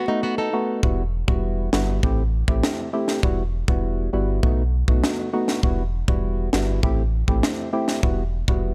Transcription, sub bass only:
0.83 1.23 E1 loud
1.28 1.68 E1 loud
1.73 2.00 G1 medium
2.03 2.43 A1 loud
2.48 2.61 A1 medium
3.23 3.63 E1 loud
3.68 4.08 E1 loud
4.13 4.40 G1 loud
4.43 4.83 B1 loud
4.88 5.01 B1 medium
5.63 6.03 E1 loud
6.08 6.48 E1 loud
6.53 6.80 G1 medium
6.83 7.23 A1 loud
7.28 7.41 A1 medium
8.03 8.43 E1 loud
8.48 8.74 E1 medium

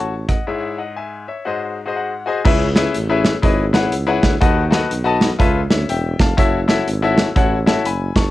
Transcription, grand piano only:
0.00 0.13 F#4 medium
0.00 0.13 A4 medium
0.00 0.13 C#5 medium
0.00 0.28 A5 medium
0.00 0.27 C#6 medium
0.28 0.76 D#5 medium
0.28 0.76 F#5 medium
0.47 1.24 G#2 medium
0.47 0.78 E4 medium
0.47 0.78 G#4 medium
0.47 0.78 C#5 medium
0.47 0.79 E5 medium
0.78 0.96 D#5 soft
0.78 0.96 F#5 medium
0.96 1.26 E5 soft
0.96 1.26 G#5 medium
1.28 1.75 C#5 soft
1.28 1.75 E5 medium
1.45 2.23 G#2 medium
1.45 1.77 F#4 medium
1.45 1.77 G#4 medium
1.45 1.77 C5 medium
1.45 1.77 D#5 medium
1.85 2.11 F#4 medium
1.85 2.11 G#4 medium
1.85 2.11 C5 medium
1.85 2.12 D#5 medium
1.96 2.25 F#5 medium
2.26 2.38 F#4 medium
2.26 2.39 G#4 medium
2.26 2.39 C5 medium
2.26 2.40 D#5 medium
2.26 2.44 G#5 medium
2.44 3.21 C#3 medium
2.44 2.65 E4 loud
2.44 2.65 G#4 medium
2.44 2.65 B4 medium
2.44 2.66 C#5 medium
2.44 2.66 E5 medium
2.76 2.94 E4 loud
2.76 2.94 G#4 medium
2.76 2.95 B4 medium
2.76 2.95 C#5 medium
2.76 2.95 E5 medium
3.09 3.34 E4 medium
3.09 3.34 G#4 medium
3.09 3.34 B4 medium
3.09 3.35 C#5 medium
3.09 3.35 E5 medium
3.42 3.63 E4 medium
3.42 3.64 G#4 medium
3.42 3.64 B4 medium
3.42 3.64 C#5 medium
3.42 3.64 D#5 medium
3.73 3.92 E4 medium
3.73 3.92 G#4 medium
3.73 3.92 B4 medium
3.73 3.93 C#5 medium
3.73 3.93 F#5 medium
4.07 4.32 E4 medium
4.07 4.32 G#4 medium
4.07 4.32 B4 medium
4.07 4.32 C#5 medium
4.07 4.33 F#5 loud
4.41 5.17 D#3 medium
4.41 4.62 F#4 medium
4.41 4.62 A4 medium
4.41 4.62 B4 medium
4.41 4.62 D#5 medium
4.41 4.62 F#5 loud
4.71 4.90 F#4 medium
4.71 4.90 A4 medium
4.71 4.91 B4 medium
4.71 4.91 D#5 medium
4.71 4.91 F#5 loud
5.04 5.30 F#4 loud
5.04 5.30 A4 medium
5.04 5.30 B4 medium
5.04 5.31 D#5 medium
5.04 5.31 A5 loud
5.39 6.15 C#3 medium
5.39 5.60 F4 medium
5.39 5.60 A4 medium
5.39 5.60 B4 medium
5.39 5.60 C#5 medium
5.39 5.61 E5 medium
5.70 5.88 C#5 soft
5.70 5.88 E5 medium
5.89 6.19 E5 medium
5.89 6.18 G5 medium
6.20 6.67 F5 medium
6.20 6.66 A5 medium
6.37 6.58 E4 medium
6.37 6.58 F#4 medium
6.37 6.59 A4 medium
6.37 6.59 C#5 medium
6.37 6.59 E5 loud
6.68 6.87 E4 medium
6.68 6.87 F#4 medium
6.68 6.87 A4 medium
6.68 6.87 C#5 medium
6.68 6.88 E5 medium
7.03 7.27 E4 medium
7.03 7.27 F#4 medium
7.03 7.27 A4 medium
7.03 7.28 C#5 medium
7.03 7.28 E5 loud
7.36 7.56 E4 medium
7.36 7.57 F#4 medium
7.36 7.57 A4 medium
7.36 7.57 C#5 medium
7.36 7.57 F#5 medium
7.66 7.85 E4 medium
7.66 7.85 F#4 medium
7.66 7.85 A4 medium
7.66 7.85 C#5 medium
7.66 7.86 E5 medium
7.86 8.15 G#5 medium
7.86 8.15 B5 medium
8.16 8.31 A5 medium
8.16 8.31 C#6 medium

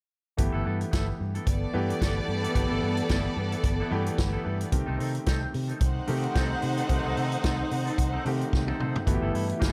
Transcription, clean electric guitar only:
0.38 muted clean electric guitar stroke soft
0.52 0.64 B3 medium
0.52 0.65 E4 medium
0.52 0.66 A4 medium
0.65 0.82 B3 medium
0.65 0.81 E4 medium
0.65 0.79 A4 medium
0.80 muted clean electric guitar stroke soft
0.91 1.12 B3 medium
0.91 1.08 E4 medium
0.91 1.07 A4 medium
1.08 muted clean electric guitar stroke soft
1.20 muted clean electric guitar stroke soft
1.35 1.45 B3 soft
1.35 1.47 E4 medium
1.35 1.47 A4 medium
1.47 muted clean electric guitar stroke soft
1.62 muted clean electric guitar stroke soft
1.90 muted clean electric guitar stroke soft
2.01 2.21 B3 medium
2.01 2.16 E4 medium
2.01 2.15 A4 medium
2.16 muted clean electric guitar stroke soft
2.28 muted clean electric guitar stroke soft
2.43 2.54 B3 soft
2.43 2.55 E4 soft
2.43 2.56 A4 medium
2.56 muted clean electric guitar stroke soft
2.70 2.82 B3 medium
2.70 2.83 E4 medium
2.70 2.84 A4 medium
2.83 2.99 B3 medium
2.83 2.98 E4 medium
2.83 2.97 A4 medium
2.98 muted clean electric guitar stroke soft
3.10 3.30 B3 medium
3.10 3.27 E4 medium
3.10 3.25 A4 medium
3.26 muted clean electric guitar stroke soft
3.38 muted clean electric guitar stroke soft
3.52 3.63 B3 soft
3.52 3.64 E4 soft
3.52 3.65 A4 medium
3.64 muted clean electric guitar stroke soft
3.80 3.91 B3 medium
3.80 3.92 E4 medium
3.80 3.92 A4 medium
3.92 muted clean electric guitar stroke soft
4.07 muted clean electric guitar stroke soft
4.17 muted clean electric guitar stroke soft
4.33 4.43 B3 medium
4.33 4.44 E4 medium
4.33 4.45 A4 medium
4.44 4.61 B3 medium
4.44 4.60 E4 medium
4.44 4.59 A4 medium
4.60 muted clean electric guitar stroke soft
4.71 muted clean electric guitar stroke soft
4.86 4.97 C4 medium
4.86 4.99 D#4 medium
4.86 4.99 A4 medium
4.98 5.15 C4 medium
4.98 5.14 D#4 medium
4.98 5.12 A4 soft
5.14 muted clean electric guitar stroke soft
5.26 5.47 C4 medium
5.26 5.42 D#4 medium
5.26 5.41 A4 medium
5.42 muted clean electric guitar stroke soft
5.53 muted clean electric guitar stroke soft
5.68 5.80 C4 soft
5.68 5.80 D#4 soft
5.68 5.81 A4 soft
5.81 muted clean electric guitar stroke soft
5.96 muted clean electric guitar stroke soft
6.24 muted clean electric guitar stroke soft
6.35 6.55 C4 medium
6.35 6.51 D#4 medium
6.35 6.49 A4 medium
6.51 muted clean electric guitar stroke soft
6.63 muted clean electric guitar stroke soft
6.77 6.88 C4 soft
6.77 6.89 D#4 soft
6.77 6.90 A4 soft
6.89 muted clean electric guitar stroke soft
7.04 7.15 C4 medium
7.04 7.16 D#4 medium
7.04 7.17 A4 medium
7.16 7.33 C4 medium
7.16 7.32 D#4 medium
7.16 7.31 A4 medium
7.32 muted clean electric guitar stroke soft
7.44 7.64 C4 medium
7.44 7.59 D#4 medium
7.44 7.58 A4 medium
7.59 muted clean electric guitar stroke soft
7.85 7.97 C4 soft
7.85 7.98 D#4 soft
7.85 7.98 A4 medium
7.98 muted clean electric guitar stroke soft
8.13 8.24 C4 medium
8.13 8.25 D#4 medium
8.13 8.25 A4 medium
8.25 muted clean electric guitar stroke soft
8.41 muted clean electric guitar stroke soft
8.53 muted clean electric guitar stroke soft
8.68 8.79 C4 medium
8.68 8.80 D#4 medium
8.68 8.81 A4 medium
8.80 8.96 C4 medium
8.80 8.95 D#4 medium
8.80 8.94 A4 medium
8.95 muted clean electric guitar stroke soft
9.07 muted clean electric guitar stroke soft
9.22 9.32 B3 medium
9.22 9.34 E4 medium
9.22 9.34 A4 medium
9.34 9.50 B3 medium
9.34 9.49 E4 medium
9.34 9.47 A4 medium
9.48 muted clean electric guitar stroke soft
9.59 9.72 B3 medium
9.59 9.72 E4 medium
9.59 9.72 A4 medium

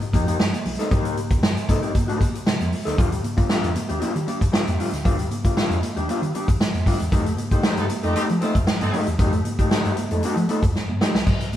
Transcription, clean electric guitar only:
0.02 muted clean electric guitar stroke soft
0.13 0.27 A#3 medium
0.13 0.26 D#4 medium
0.13 0.26 G4 medium
0.27 0.38 A#3 medium
0.27 0.39 D#4 medium
0.27 0.40 G4 medium
0.39 muted clean electric guitar stroke soft
0.52 muted clean electric guitar stroke soft
0.79 0.89 A#3 medium
0.79 0.90 D#4 medium
0.79 0.92 A4 medium
0.90 1.15 A#3 medium
0.90 1.15 D#4 medium
0.90 1.16 G4 loud
1.31 muted clean electric guitar stroke soft
1.43 muted clean electric guitar stroke soft
1.56 muted clean electric guitar stroke soft
1.69 1.83 A#3 medium
1.69 1.82 D#4 medium
1.69 1.82 A4 medium
1.82 1.93 A#3 medium
1.82 1.94 D#4 soft
1.82 1.94 G4 medium
1.94 muted clean electric guitar stroke soft
2.08 2.19 A#3 medium
2.08 2.20 D#4 medium
2.08 2.21 G4 medium
2.21 muted clean electric guitar stroke soft
2.34 muted clean electric guitar stroke soft
2.46 muted clean electric guitar stroke medium
2.60 muted clean electric guitar stroke soft
2.85 2.97 A#3 medium
2.85 2.98 D#4 medium
2.85 2.99 A4 medium
2.98 3.17 G3 medium
2.98 3.12 D4 medium
2.98 3.11 F4 medium
3.12 muted clean electric guitar stroke soft
3.24 muted clean electric guitar stroke soft
3.37 3.49 G3 medium
3.37 3.49 D4 medium
3.37 3.50 F4 medium
3.50 3.69 G3 medium
3.50 3.69 D4 medium
3.50 3.70 F4 medium
3.75 muted clean electric guitar stroke soft
3.89 3.99 G3 medium
3.89 4.00 D4 medium
3.89 4.02 G4 medium
4.00 4.22 G3 medium
4.00 4.15 D4 medium
4.00 4.14 F4 medium
4.15 muted clean electric guitar stroke soft
4.27 4.42 G3 medium
4.27 4.41 D4 medium
4.27 4.41 G4 medium
4.41 muted clean electric guitar stroke soft
4.52 4.72 G3 medium
4.52 4.66 D4 medium
4.52 4.65 F4 medium
4.66 muted clean electric guitar stroke soft
4.79 4.94 G3 medium
4.79 4.93 D4 medium
4.79 4.91 F4 medium
4.92 muted clean electric guitar stroke soft
5.04 5.24 G3 medium
5.04 5.19 D4 medium
5.04 5.18 F4 medium
5.19 muted clean electric guitar stroke soft
5.31 muted clean electric guitar stroke soft
5.45 5.56 G3 soft
5.45 5.57 D4 soft
5.45 5.58 F4 medium
5.57 5.76 G3 medium
5.57 5.77 D4 medium
5.57 5.77 F4 loud
5.83 muted clean electric guitar stroke soft
5.96 6.08 G3 medium
5.96 6.09 D4 medium
5.96 6.10 G4 medium
6.09 6.28 G3 medium
6.09 6.24 D4 medium
6.09 6.22 F4 medium
6.23 muted clean electric guitar stroke soft
6.34 6.50 G3 medium
6.34 6.49 D4 medium
6.34 6.48 G4 medium
6.48 muted clean electric guitar stroke soft
6.60 muted clean electric guitar stroke soft
6.86 7.02 G3 medium
6.86 7.01 D4 medium
6.86 6.99 F4 medium
7.00 muted clean electric guitar stroke soft
7.12 7.31 A3 medium
7.12 7.26 D#4 medium
7.12 7.24 G4 medium
7.26 muted clean electric guitar stroke soft
7.39 muted clean electric guitar stroke soft
7.52 7.63 A3 soft
7.52 7.65 D#4 medium
7.52 7.65 G4 medium
7.65 7.83 A3 medium
7.65 7.84 D#4 medium
7.65 7.84 G4 loud
7.90 muted clean electric guitar stroke soft
8.03 8.15 A3 soft
8.03 8.16 D#4 medium
8.03 8.17 A4 medium
8.16 8.35 A3 medium
8.16 8.29 D#4 medium
8.16 8.28 G4 loud
8.29 muted clean electric guitar stroke soft
8.41 8.57 A3 medium
8.41 8.56 D#4 medium
8.41 8.55 A4 medium
8.56 muted clean electric guitar stroke medium
8.68 muted clean electric guitar stroke soft
8.94 9.09 A3 medium
8.94 9.08 D#4 medium
8.94 9.07 G4 medium
9.08 muted clean electric guitar stroke soft
9.20 9.39 A3 medium
9.20 9.34 D#4 medium
9.20 9.32 G4 loud
9.33 muted clean electric guitar stroke medium
9.46 muted clean electric guitar stroke soft
9.59 9.70 A3 medium
9.59 9.72 D#4 medium
9.59 9.73 G4 medium
9.72 9.90 A3 medium
9.72 9.91 D#4 medium
9.72 9.92 G4 loud
9.98 muted clean electric guitar stroke soft
10.11 10.23 A3 soft
10.11 10.23 D#4 medium
10.11 10.25 A4 medium
10.24 10.44 A3 medium
10.24 10.37 D#4 medium
10.24 10.36 G4 loud
10.37 muted clean electric guitar stroke soft
10.49 10.64 A3 medium
10.49 10.63 D#4 medium
10.49 10.63 A4 medium
10.63 muted clean electric guitar stroke soft
10.75 muted clean electric guitar stroke soft
11.01 11.16 A3 medium
11.01 11.15 D#4 medium
11.01 11.14 G4 medium
11.15 muted clean electric guitar stroke soft

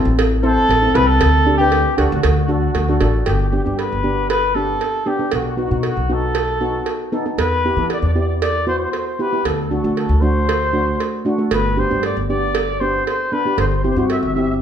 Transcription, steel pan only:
0.00 0.24 C4 medium
0.00 0.24 E4 medium
0.00 0.24 A4 medium
0.43 0.67 C4 medium
0.43 0.67 E4 medium
0.43 0.67 C5 medium
0.82 0.90 C4 medium
0.82 0.90 E4 medium
0.82 0.90 A4 medium
0.94 1.21 C4 medium
0.94 1.21 E4 medium
0.94 1.21 A4 medium
1.46 1.54 D4 medium
1.46 1.54 G4 medium
1.46 1.55 A4 medium
1.60 1.83 D4 medium
1.60 1.83 G4 medium
1.60 1.83 B4 medium
1.97 2.23 D4 medium
1.97 2.23 G4 medium
1.97 2.24 A4 medium
2.48 2.72 D4 medium
2.48 2.72 F#4 medium
2.48 2.72 A4 medium
2.89 2.96 D4 medium
2.89 2.96 F#4 medium
2.89 2.96 A4 medium
3.01 3.27 D4 medium
3.01 3.27 F#4 medium
3.01 3.27 A4 medium
3.52 3.60 B3 medium
3.52 3.60 D4 medium
3.52 3.60 G4 medium
3.65 3.89 B3 medium
3.65 3.88 D4 medium
3.65 3.89 G4 medium
4.04 4.35 B3 medium
4.04 4.35 D4 medium
4.04 4.35 G4 medium
4.55 4.86 B3 medium
4.55 4.86 D4 medium
4.55 4.86 G4 medium
5.06 5.14 B3 medium
5.06 5.14 D4 medium
5.06 5.14 G4 medium
5.19 5.32 B3 medium
5.19 5.32 D4 medium
5.19 5.32 A4 medium
5.57 5.66 B3 medium
5.57 5.66 D#4 medium
5.57 5.66 F#4 medium
5.71 5.94 B3 medium
5.71 5.94 D#4 medium
5.71 5.94 F#4 medium
6.09 6.41 B3 medium
6.09 6.41 D#4 medium
6.09 6.41 F#4 medium
6.61 6.92 B3 medium
6.61 6.92 D#4 medium
6.61 6.92 F#4 medium
7.12 7.21 B3 medium
7.12 7.21 D#4 medium
7.12 7.21 A4 medium
7.26 7.38 B3 medium
7.26 7.38 D#4 medium
7.26 7.39 A4 medium
7.65 7.73 B3 medium
7.65 7.73 E4 medium
7.65 7.73 G4 medium
7.78 8.01 B3 medium
7.78 8.01 E4 medium
7.78 8.01 A4 medium
8.16 8.47 B3 medium
8.16 8.47 E4 medium
8.16 8.47 G4 medium
8.67 8.98 B3 medium
8.67 8.98 E4 medium
8.67 8.98 F#4 medium
9.19 9.27 B3 medium
9.19 9.27 E4 medium
9.19 9.27 G4 medium
9.33 9.45 B3 medium
9.33 9.45 E4 medium
9.33 9.45 G4 medium
9.71 9.79 A3 medium
9.71 9.79 D4 medium
9.71 9.79 F#4 medium
9.84 10.07 A3 medium
9.84 10.07 D4 medium
9.84 10.07 F#4 medium
10.22 10.53 A3 medium
10.22 10.53 D4 medium
10.22 10.54 F#4 medium
10.73 11.05 A3 medium
10.73 11.05 D4 medium
10.73 11.05 F#4 medium
11.25 11.33 A3 medium
11.25 11.33 D4 medium
11.25 11.33 F#4 medium
11.38 11.51 A3 medium
11.38 11.51 D4 medium
11.38 11.51 A4 medium
11.77 11.85 B3 medium
11.77 11.85 D4 medium
11.77 11.85 G4 medium
11.90 12.13 B3 medium
11.90 12.13 D4 medium
11.90 12.13 G4 medium
12.30 12.60 B3 medium
12.30 12.60 D4 medium
12.30 12.60 G4 medium
12.81 13.12 B3 medium
12.81 13.12 D4 medium
12.81 13.12 G4 medium
13.32 13.40 B3 medium
13.32 13.40 D4 medium
13.32 13.40 A4 medium
13.45 13.58 B3 medium
13.45 13.58 D4 medium
13.45 13.58 G4 medium
13.84 13.92 C4 medium
13.84 13.92 E4 medium
13.84 13.92 G4 medium
13.97 14.20 C4 medium
13.97 14.20 E4 medium
13.97 14.20 F#4 medium
14.36 14.62 C4 medium
14.36 14.62 E4 medium
14.36 14.62 G4 medium

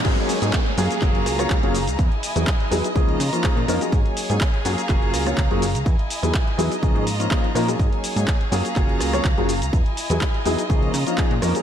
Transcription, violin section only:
0.05 1.97 G#4 medium
0.05 0.77 C#5 medium
0.05 0.77 G#5 medium
0.77 1.97 F5 medium
0.77 1.97 A#5 medium
1.99 2.94 E4 medium
1.99 3.90 D#5 medium
1.99 2.95 G#5 medium
2.96 3.91 F4 medium
2.96 3.91 A#5 medium
3.92 5.84 G#4 medium
3.92 4.64 C#5 medium
3.92 4.64 G#5 medium
4.65 5.85 F5 medium
4.65 5.85 A#5 medium
5.86 6.82 E4 medium
5.86 7.77 D#5 medium
5.86 6.82 G#5 medium
6.82 7.78 F4 medium
6.82 7.78 A#5 medium
7.79 9.71 G#4 medium
7.79 8.51 C#5 medium
7.79 8.51 G#5 medium
8.52 9.72 F5 medium
8.52 9.72 A#5 medium
9.73 10.69 E4 medium
9.73 11.62 D#5 medium
9.73 10.69 G#5 medium
10.69 11.62 F4 medium
10.69 11.62 A#5 medium

